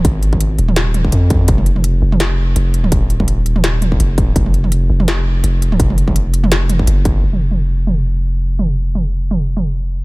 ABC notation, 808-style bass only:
X:1
M:4/4
L:1/8
Q:"Swing 16ths" 1/4=167
K:Ebdor
V:1 name="808-style bass" clef=bass
A,,,3 E,,,3 F,,2 | F,,,3 F,,,3 F,,,2 | E,,,6 F,,,2 | F,,,3 F,,,3 F,,,2 |
F,,,6 G,,,2 | F,,,8- | F,,,8 |]